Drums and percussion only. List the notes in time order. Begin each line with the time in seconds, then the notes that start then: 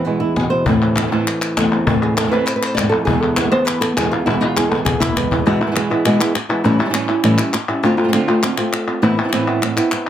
0.36 cajon slap
0.66 cajon bass
0.81 cajon slap
0.96 cajon slap, clap
1.11 cajon slap, clap
1.27 clap
1.42 clap
1.57 cajon slap, clap
1.72 cajon slap, clap
1.87 cajon bass
2.02 cajon slap
2.17 cajon slap, clap
2.33 clap
2.47 clap
2.63 clap
2.77 cajon slap, clap
2.93 clap
3.07 cajon bass
3.23 cajon slap
3.37 cajon slap, clap
3.53 cajon slap
3.67 clap
3.82 clap
3.97 cajon slap, clap
4.13 cajon slap, clap
4.27 cajon slap
4.57 cajon slap, clap
4.72 cajon slap, clap
4.86 cajon bass, clap
5.01 cajon bass, clap
5.16 cajon bass, clap
5.31 cajon bass, clap
5.76 clap
6.06 clap
6.21 clap
6.35 clap
6.94 clap
7.08 clap
7.24 clap
7.38 clap
7.53 clap
7.69 clap
8.13 clap
8.29 clap
8.43 clap
8.58 clap
8.73 clap
8.88 clap
9.33 clap
9.48 clap
9.62 clap
9.77 clap
9.92 clap